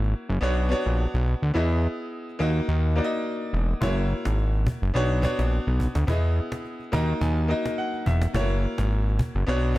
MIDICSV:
0, 0, Header, 1, 4, 480
1, 0, Start_track
1, 0, Tempo, 566038
1, 1316, Time_signature, 4, 2, 24, 8
1, 8294, End_track
2, 0, Start_track
2, 0, Title_t, "Grand piano"
2, 0, Program_c, 0, 0
2, 0, Control_c, 0, 64, 127
2, 0, Note_on_c, 0, 58, 82
2, 0, Note_on_c, 0, 64, 76
2, 0, Note_on_c, 0, 66, 79
2, 0, Note_on_c, 0, 73, 90
2, 345, Note_on_c, 0, 59, 88
2, 353, Note_on_c, 0, 62, 78
2, 361, Note_off_c, 0, 66, 0
2, 361, Note_on_c, 0, 66, 80
2, 367, Note_off_c, 0, 73, 0
2, 367, Note_on_c, 0, 73, 93
2, 368, Control_c, 0, 64, 0
2, 370, Note_off_c, 0, 64, 0
2, 375, Note_off_c, 0, 58, 0
2, 495, Control_c, 0, 64, 127
2, 547, Note_off_c, 0, 59, 0
2, 551, Note_off_c, 0, 62, 0
2, 555, Note_off_c, 0, 66, 0
2, 559, Note_off_c, 0, 73, 0
2, 585, Note_on_c, 0, 59, 85
2, 591, Note_on_c, 0, 62, 76
2, 599, Note_on_c, 0, 66, 75
2, 607, Note_on_c, 0, 73, 93
2, 1032, Note_off_c, 0, 59, 0
2, 1036, Note_off_c, 0, 62, 0
2, 1039, Note_off_c, 0, 66, 0
2, 1043, Note_off_c, 0, 73, 0
2, 1303, Note_on_c, 0, 59, 79
2, 1310, Note_on_c, 0, 64, 79
2, 1318, Note_on_c, 0, 68, 78
2, 1325, Note_on_c, 0, 75, 91
2, 1327, Control_c, 0, 64, 0
2, 1479, Control_c, 0, 64, 127
2, 1903, Note_off_c, 0, 59, 0
2, 1907, Note_off_c, 0, 64, 0
2, 1911, Note_off_c, 0, 68, 0
2, 1914, Note_off_c, 0, 75, 0
2, 2026, Note_on_c, 0, 58, 92
2, 2033, Note_on_c, 0, 63, 81
2, 2039, Note_on_c, 0, 66, 85
2, 2045, Control_c, 0, 64, 0
2, 2047, Note_on_c, 0, 75, 95
2, 2200, Control_c, 0, 64, 127
2, 2425, Note_off_c, 0, 58, 0
2, 2428, Note_off_c, 0, 63, 0
2, 2431, Note_off_c, 0, 66, 0
2, 2435, Note_off_c, 0, 75, 0
2, 2506, Note_on_c, 0, 58, 84
2, 2512, Note_on_c, 0, 63, 76
2, 2520, Note_on_c, 0, 66, 79
2, 2527, Note_on_c, 0, 74, 75
2, 2581, Note_on_c, 0, 75, 97
2, 2582, Note_off_c, 0, 74, 0
2, 2953, Note_off_c, 0, 58, 0
2, 2956, Note_off_c, 0, 63, 0
2, 2960, Note_off_c, 0, 66, 0
2, 2991, Note_off_c, 0, 75, 0
2, 3228, Note_on_c, 0, 56, 67
2, 3235, Note_on_c, 0, 64, 79
2, 3242, Note_on_c, 0, 66, 78
2, 3248, Control_c, 0, 64, 0
2, 3249, Note_on_c, 0, 73, 91
2, 3282, Note_on_c, 0, 58, 79
2, 3293, Note_off_c, 0, 56, 0
2, 3391, Control_c, 0, 64, 127
2, 3829, Note_off_c, 0, 64, 0
2, 3833, Note_off_c, 0, 66, 0
2, 3837, Note_off_c, 0, 73, 0
2, 3853, Note_off_c, 0, 58, 0
2, 4186, Note_on_c, 0, 59, 85
2, 4193, Note_on_c, 0, 62, 82
2, 4200, Note_on_c, 0, 66, 79
2, 4207, Note_on_c, 0, 73, 98
2, 4208, Control_c, 0, 64, 0
2, 4370, Control_c, 0, 64, 127
2, 4388, Note_off_c, 0, 59, 0
2, 4391, Note_off_c, 0, 62, 0
2, 4395, Note_off_c, 0, 66, 0
2, 4398, Note_off_c, 0, 73, 0
2, 4428, Note_on_c, 0, 59, 87
2, 4436, Note_on_c, 0, 62, 79
2, 4442, Note_on_c, 0, 66, 78
2, 4449, Note_on_c, 0, 73, 94
2, 4874, Note_off_c, 0, 59, 0
2, 4878, Note_off_c, 0, 62, 0
2, 4881, Note_off_c, 0, 66, 0
2, 4884, Note_off_c, 0, 73, 0
2, 5148, Note_on_c, 0, 59, 83
2, 5156, Note_on_c, 0, 64, 78
2, 5163, Note_on_c, 0, 68, 76
2, 5168, Control_c, 0, 64, 0
2, 5170, Note_on_c, 0, 75, 92
2, 5299, Control_c, 0, 64, 127
2, 5746, Note_off_c, 0, 59, 0
2, 5750, Note_off_c, 0, 64, 0
2, 5753, Note_off_c, 0, 68, 0
2, 5757, Note_off_c, 0, 75, 0
2, 5867, Note_on_c, 0, 58, 90
2, 5875, Note_on_c, 0, 63, 83
2, 5878, Note_on_c, 0, 82, 76
2, 5882, Note_on_c, 0, 66, 78
2, 5886, Control_c, 0, 64, 0
2, 5888, Note_on_c, 0, 75, 97
2, 6015, Control_c, 0, 64, 127
2, 6101, Note_off_c, 0, 82, 0
2, 6116, Note_on_c, 0, 80, 73
2, 6265, Note_off_c, 0, 58, 0
2, 6269, Note_off_c, 0, 63, 0
2, 6273, Note_off_c, 0, 66, 0
2, 6276, Note_off_c, 0, 75, 0
2, 6344, Note_on_c, 0, 58, 85
2, 6352, Note_on_c, 0, 63, 78
2, 6358, Note_on_c, 0, 66, 78
2, 6366, Note_on_c, 0, 75, 91
2, 6563, Note_off_c, 0, 80, 0
2, 6597, Note_on_c, 0, 78, 72
2, 6792, Note_off_c, 0, 58, 0
2, 6796, Note_off_c, 0, 63, 0
2, 6799, Note_off_c, 0, 66, 0
2, 6803, Note_off_c, 0, 75, 0
2, 6820, Note_off_c, 0, 78, 0
2, 6837, Note_on_c, 0, 76, 69
2, 7060, Note_off_c, 0, 76, 0
2, 7067, Note_on_c, 0, 57, 66
2, 7075, Note_on_c, 0, 64, 74
2, 7082, Note_on_c, 0, 66, 75
2, 7088, Note_on_c, 0, 73, 92
2, 7089, Control_c, 0, 64, 0
2, 7122, Note_on_c, 0, 58, 88
2, 7132, Note_off_c, 0, 57, 0
2, 7245, Control_c, 0, 64, 127
2, 7670, Note_off_c, 0, 64, 0
2, 7673, Note_off_c, 0, 66, 0
2, 7676, Note_off_c, 0, 73, 0
2, 7693, Note_off_c, 0, 58, 0
2, 8026, Note_on_c, 0, 59, 88
2, 8034, Note_on_c, 0, 62, 79
2, 8041, Note_on_c, 0, 66, 81
2, 8048, Control_c, 0, 64, 0
2, 8048, Note_on_c, 0, 73, 97
2, 8174, Control_c, 0, 64, 127
2, 8228, Note_off_c, 0, 59, 0
2, 8232, Note_off_c, 0, 62, 0
2, 8235, Note_off_c, 0, 66, 0
2, 8239, Note_off_c, 0, 73, 0
2, 8267, Note_on_c, 0, 59, 82
2, 8294, Note_off_c, 0, 59, 0
2, 8294, End_track
3, 0, Start_track
3, 0, Title_t, "Analog synth bass"
3, 0, Program_c, 1, 38
3, 0, Note_on_c, 1, 32, 82
3, 123, Note_off_c, 1, 32, 0
3, 248, Note_on_c, 1, 30, 89
3, 328, Note_off_c, 1, 30, 0
3, 356, Note_on_c, 1, 35, 105
3, 631, Note_off_c, 1, 35, 0
3, 730, Note_on_c, 1, 34, 82
3, 907, Note_off_c, 1, 34, 0
3, 969, Note_on_c, 1, 35, 96
3, 1146, Note_off_c, 1, 35, 0
3, 1208, Note_on_c, 1, 38, 90
3, 1288, Note_off_c, 1, 38, 0
3, 1316, Note_on_c, 1, 40, 105
3, 1591, Note_off_c, 1, 40, 0
3, 2037, Note_on_c, 1, 39, 100
3, 2214, Note_off_c, 1, 39, 0
3, 2276, Note_on_c, 1, 39, 102
3, 2551, Note_off_c, 1, 39, 0
3, 2996, Note_on_c, 1, 28, 102
3, 3174, Note_off_c, 1, 28, 0
3, 3237, Note_on_c, 1, 30, 97
3, 3512, Note_off_c, 1, 30, 0
3, 3611, Note_on_c, 1, 32, 84
3, 3964, Note_off_c, 1, 32, 0
3, 4089, Note_on_c, 1, 30, 87
3, 4169, Note_off_c, 1, 30, 0
3, 4198, Note_on_c, 1, 35, 102
3, 4472, Note_off_c, 1, 35, 0
3, 4570, Note_on_c, 1, 34, 84
3, 4747, Note_off_c, 1, 34, 0
3, 4810, Note_on_c, 1, 35, 92
3, 4987, Note_off_c, 1, 35, 0
3, 5049, Note_on_c, 1, 38, 91
3, 5129, Note_off_c, 1, 38, 0
3, 5156, Note_on_c, 1, 40, 103
3, 5431, Note_off_c, 1, 40, 0
3, 5878, Note_on_c, 1, 39, 97
3, 6055, Note_off_c, 1, 39, 0
3, 6117, Note_on_c, 1, 39, 100
3, 6392, Note_off_c, 1, 39, 0
3, 6837, Note_on_c, 1, 28, 99
3, 7014, Note_off_c, 1, 28, 0
3, 7076, Note_on_c, 1, 30, 100
3, 7351, Note_off_c, 1, 30, 0
3, 7449, Note_on_c, 1, 32, 90
3, 7804, Note_off_c, 1, 32, 0
3, 7930, Note_on_c, 1, 30, 85
3, 8009, Note_off_c, 1, 30, 0
3, 8037, Note_on_c, 1, 35, 100
3, 8294, Note_off_c, 1, 35, 0
3, 8294, End_track
4, 0, Start_track
4, 0, Title_t, "Cajon"
4, 3236, Note_on_c, 9, 36, 112
4, 3321, Note_off_c, 9, 36, 0
4, 3607, Note_on_c, 9, 38, 97
4, 3692, Note_off_c, 9, 38, 0
4, 3715, Note_on_c, 9, 38, 38
4, 3800, Note_off_c, 9, 38, 0
4, 3843, Note_on_c, 9, 38, 25
4, 3928, Note_off_c, 9, 38, 0
4, 3957, Note_on_c, 9, 36, 97
4, 3957, Note_on_c, 9, 38, 92
4, 4042, Note_off_c, 9, 36, 0
4, 4042, Note_off_c, 9, 38, 0
4, 4092, Note_on_c, 9, 38, 31
4, 4177, Note_off_c, 9, 38, 0
4, 4326, Note_on_c, 9, 38, 30
4, 4410, Note_off_c, 9, 38, 0
4, 4437, Note_on_c, 9, 36, 96
4, 4521, Note_off_c, 9, 36, 0
4, 4570, Note_on_c, 9, 38, 89
4, 4655, Note_off_c, 9, 38, 0
4, 4679, Note_on_c, 9, 38, 33
4, 4764, Note_off_c, 9, 38, 0
4, 4812, Note_on_c, 9, 38, 31
4, 4896, Note_off_c, 9, 38, 0
4, 4918, Note_on_c, 9, 36, 87
4, 5002, Note_off_c, 9, 36, 0
4, 5047, Note_on_c, 9, 38, 94
4, 5132, Note_off_c, 9, 38, 0
4, 5157, Note_on_c, 9, 36, 112
4, 5241, Note_off_c, 9, 36, 0
4, 5528, Note_on_c, 9, 38, 100
4, 5613, Note_off_c, 9, 38, 0
4, 5636, Note_on_c, 9, 38, 38
4, 5721, Note_off_c, 9, 38, 0
4, 5763, Note_on_c, 9, 38, 24
4, 5848, Note_off_c, 9, 38, 0
4, 5877, Note_on_c, 9, 36, 92
4, 5877, Note_on_c, 9, 38, 91
4, 5962, Note_off_c, 9, 36, 0
4, 5962, Note_off_c, 9, 38, 0
4, 6117, Note_on_c, 9, 36, 84
4, 6202, Note_off_c, 9, 36, 0
4, 6246, Note_on_c, 9, 38, 31
4, 6331, Note_off_c, 9, 38, 0
4, 6492, Note_on_c, 9, 38, 90
4, 6577, Note_off_c, 9, 38, 0
4, 6599, Note_on_c, 9, 38, 33
4, 6684, Note_off_c, 9, 38, 0
4, 6732, Note_on_c, 9, 38, 32
4, 6817, Note_off_c, 9, 38, 0
4, 6837, Note_on_c, 9, 36, 87
4, 6922, Note_off_c, 9, 36, 0
4, 6967, Note_on_c, 9, 38, 96
4, 7052, Note_off_c, 9, 38, 0
4, 7077, Note_on_c, 9, 36, 115
4, 7161, Note_off_c, 9, 36, 0
4, 7447, Note_on_c, 9, 38, 95
4, 7532, Note_off_c, 9, 38, 0
4, 7555, Note_on_c, 9, 38, 41
4, 7639, Note_off_c, 9, 38, 0
4, 7682, Note_on_c, 9, 38, 23
4, 7767, Note_off_c, 9, 38, 0
4, 7796, Note_on_c, 9, 36, 98
4, 7796, Note_on_c, 9, 38, 93
4, 7881, Note_off_c, 9, 36, 0
4, 7881, Note_off_c, 9, 38, 0
4, 7929, Note_on_c, 9, 38, 29
4, 8014, Note_off_c, 9, 38, 0
4, 8036, Note_on_c, 9, 38, 40
4, 8121, Note_off_c, 9, 38, 0
4, 8163, Note_on_c, 9, 38, 31
4, 8248, Note_off_c, 9, 38, 0
4, 8294, End_track
0, 0, End_of_file